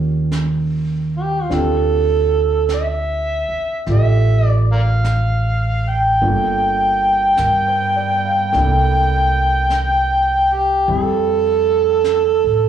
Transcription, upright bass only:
0, 0, Header, 1, 3, 480
1, 0, Start_track
1, 0, Tempo, 1183432
1, 610, Time_signature, 4, 2, 24, 8
1, 2045, Tempo, 1167315
1, 5189, End_track
2, 0, Start_track
2, 0, Title_t, "Upright bass"
2, 0, Program_c, 0, 32
2, 0, Note_on_c, 0, 39, 73
2, 593, Note_off_c, 0, 39, 0
2, 611, Note_on_c, 0, 38, 73
2, 1398, Note_off_c, 0, 38, 0
2, 1569, Note_on_c, 0, 33, 77
2, 2511, Note_off_c, 0, 33, 0
2, 2528, Note_on_c, 0, 31, 75
2, 2989, Note_off_c, 0, 31, 0
2, 3008, Note_on_c, 0, 43, 74
2, 3467, Note_off_c, 0, 43, 0
2, 3483, Note_on_c, 0, 36, 78
2, 4428, Note_off_c, 0, 36, 0
2, 4446, Note_on_c, 0, 41, 78
2, 5071, Note_off_c, 0, 41, 0
2, 5088, Note_on_c, 0, 45, 55
2, 5189, Note_off_c, 0, 45, 0
2, 5189, End_track
3, 0, Start_track
3, 0, Title_t, "Muted upright bass strokes"
3, 1415, Note_on_c, 9, 29, 36
3, 1455, Note_off_c, 9, 29, 0
3, 5189, End_track
0, 0, End_of_file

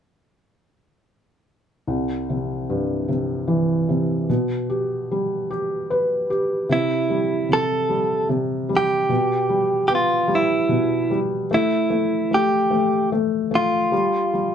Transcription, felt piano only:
0, 0, Header, 1, 2, 480
1, 0, Start_track
1, 0, Key_signature, 0, "major"
1, 0, Tempo, 803213
1, 1120, Time_signature, 6, 3, 24, 8
1, 8694, End_track
2, 0, Start_track
2, 0, Title_t, "Felt piano"
2, 0, Program_c, 0, 0
2, 1121, Note_on_c, 0, 36, 37
2, 1232, Control_c, 0, 64, 127
2, 1371, Note_on_c, 0, 48, 29
2, 1611, Note_on_c, 0, 43, 33
2, 1834, Note_off_c, 0, 48, 0
2, 1843, Note_on_c, 0, 48, 33
2, 2077, Note_on_c, 0, 52, 36
2, 2315, Note_off_c, 0, 48, 0
2, 2324, Note_on_c, 0, 48, 33
2, 2537, Note_off_c, 0, 36, 0
2, 2542, Note_off_c, 0, 43, 0
2, 2544, Note_off_c, 0, 52, 0
2, 2555, Note_off_c, 0, 48, 0
2, 2566, Note_on_c, 0, 47, 42
2, 2569, Control_c, 0, 64, 0
2, 2665, Control_c, 0, 64, 127
2, 2806, Note_on_c, 0, 67, 33
2, 3056, Note_on_c, 0, 55, 37
2, 3281, Note_off_c, 0, 67, 0
2, 3290, Note_on_c, 0, 67, 37
2, 3528, Note_on_c, 0, 71, 40
2, 3757, Note_off_c, 0, 67, 0
2, 3766, Note_on_c, 0, 67, 39
2, 3979, Note_off_c, 0, 47, 0
2, 3984, Note_off_c, 0, 55, 0
2, 3990, Note_off_c, 0, 71, 0
2, 3996, Note_off_c, 0, 67, 0
2, 4000, Note_on_c, 0, 48, 45
2, 4009, Control_c, 0, 64, 0
2, 4098, Control_c, 0, 64, 127
2, 4242, Note_on_c, 0, 55, 35
2, 4466, Note_off_c, 0, 48, 0
2, 4475, Note_on_c, 0, 48, 37
2, 4708, Note_off_c, 0, 55, 0
2, 4717, Note_on_c, 0, 55, 38
2, 4946, Note_off_c, 0, 48, 0
2, 4955, Note_on_c, 0, 48, 39
2, 5185, Note_off_c, 0, 55, 0
2, 5194, Note_on_c, 0, 55, 39
2, 5423, Note_off_c, 0, 48, 0
2, 5430, Note_off_c, 0, 55, 0
2, 5434, Note_on_c, 0, 47, 44
2, 5447, Control_c, 0, 64, 0
2, 5556, Control_c, 0, 64, 127
2, 5674, Note_on_c, 0, 55, 36
2, 5911, Note_on_c, 0, 59, 37
2, 6133, Note_off_c, 0, 55, 0
2, 6142, Note_on_c, 0, 55, 43
2, 6379, Note_off_c, 0, 47, 0
2, 6388, Note_on_c, 0, 47, 42
2, 6628, Note_off_c, 0, 55, 0
2, 6637, Note_on_c, 0, 55, 41
2, 6851, Note_off_c, 0, 59, 0
2, 6859, Note_off_c, 0, 47, 0
2, 6870, Note_off_c, 0, 55, 0
2, 6877, Note_on_c, 0, 57, 46
2, 6886, Control_c, 0, 64, 0
2, 6972, Control_c, 0, 64, 127
2, 7103, Note_off_c, 0, 57, 0
2, 7112, Note_on_c, 0, 57, 39
2, 7348, Note_off_c, 0, 57, 0
2, 7357, Note_on_c, 0, 57, 39
2, 7585, Note_off_c, 0, 57, 0
2, 7594, Note_on_c, 0, 57, 43
2, 7833, Note_off_c, 0, 57, 0
2, 7842, Note_on_c, 0, 57, 43
2, 8065, Note_off_c, 0, 57, 0
2, 8074, Note_on_c, 0, 57, 43
2, 8308, Note_off_c, 0, 57, 0
2, 8319, Note_on_c, 0, 55, 50
2, 8326, Control_c, 0, 64, 0
2, 8431, Control_c, 0, 64, 127
2, 8558, Note_off_c, 0, 55, 0
2, 8567, Note_on_c, 0, 55, 36
2, 8694, Note_off_c, 0, 55, 0
2, 8694, End_track
0, 0, End_of_file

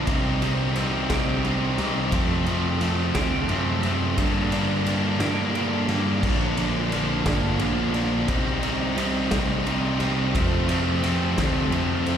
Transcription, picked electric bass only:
0, 0, Header, 1, 2, 480
1, 0, Start_track
1, 0, Tempo, 684932
1, 53, Time_signature, 6, 3, 24, 8
1, 8532, End_track
2, 0, Start_track
2, 0, Title_t, "Picked electric bass"
2, 0, Program_c, 0, 34
2, 51, Note_on_c, 0, 36, 88
2, 743, Note_off_c, 0, 36, 0
2, 768, Note_on_c, 0, 36, 111
2, 1222, Note_off_c, 0, 36, 0
2, 1247, Note_on_c, 0, 36, 95
2, 1473, Note_off_c, 0, 36, 0
2, 1487, Note_on_c, 0, 41, 90
2, 2181, Note_off_c, 0, 41, 0
2, 2207, Note_on_c, 0, 38, 94
2, 2433, Note_off_c, 0, 38, 0
2, 2443, Note_on_c, 0, 42, 79
2, 2899, Note_off_c, 0, 42, 0
2, 2929, Note_on_c, 0, 43, 80
2, 3623, Note_off_c, 0, 43, 0
2, 3644, Note_on_c, 0, 43, 101
2, 4100, Note_off_c, 0, 43, 0
2, 4123, Note_on_c, 0, 43, 99
2, 4351, Note_off_c, 0, 43, 0
2, 4366, Note_on_c, 0, 34, 84
2, 5062, Note_off_c, 0, 34, 0
2, 5086, Note_on_c, 0, 31, 99
2, 5313, Note_off_c, 0, 31, 0
2, 5316, Note_on_c, 0, 34, 77
2, 5777, Note_off_c, 0, 34, 0
2, 5806, Note_on_c, 0, 36, 92
2, 6503, Note_off_c, 0, 36, 0
2, 6525, Note_on_c, 0, 36, 111
2, 6983, Note_off_c, 0, 36, 0
2, 7007, Note_on_c, 0, 36, 106
2, 7235, Note_off_c, 0, 36, 0
2, 7254, Note_on_c, 0, 41, 84
2, 7948, Note_off_c, 0, 41, 0
2, 7977, Note_on_c, 0, 38, 93
2, 8197, Note_off_c, 0, 38, 0
2, 8201, Note_on_c, 0, 41, 89
2, 8532, Note_off_c, 0, 41, 0
2, 8532, End_track
0, 0, End_of_file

